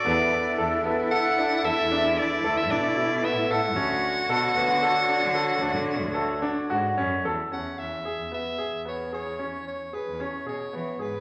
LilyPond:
<<
  \new Staff \with { instrumentName = "Soprano saxophone" } { \time 7/4 \key cis \phrygian \tempo 4 = 113 d''4. r8 fis''4 e''4 d''8. e''16 d''4 e''8 fis''8~ | fis''1. r4 | fis''8 e''4 e''4 cis''8 cis''4 cis''8 b'8 cis''8 cis''8 cis''8 b'8 | }
  \new Staff \with { instrumentName = "Cello" } { \time 7/4 \key cis \phrygian e'1.~ e'4 | fis'1.~ fis'8 r8 | r1. r4 | }
  \new Staff \with { instrumentName = "Woodwind section" } { \time 7/4 \key cis \phrygian << { <e a'>1.~ <e a'>4 | <d fis'>1.~ <d fis'>4 | r1. r4 | } \\ { d'2.~ d'8 e'2.~ e'8 | cis''1.~ cis''4 | r1. r4 | } >> }
  \new Staff \with { instrumentName = "Grand piano" } { \time 7/4 \key cis \phrygian b4 a'8 b8 a'8 d'8 a'8 d'4 a'8 d'8 e'8 b8 a'8 | cis'4 a'8 b8 a'8 d'8 a'8 d'4 a'8 d'8 fis'8 cis'8 a'8 | cis'4 gis'8 b8 gis'8 b8 gis'8 cis'4 gis'8 cis'8 gis'8 b8 gis'8 | }
  \new Staff \with { instrumentName = "Cello" } { \clef bass \time 7/4 \key cis \phrygian e,8 r8 e,8 r4. e,16 e,4~ e,16 d,8 b,4~ b,16 a,8. | d,8 r8 b,16 r16 d,16 d8 r8 d8. d,16 d8 d,8 r8. gis,8 fis,8 e,8 | e,8 e,8 r16 e,8 r8 e,2~ e,8 e,8. b,16 r16 e8 gis,8 | }
>>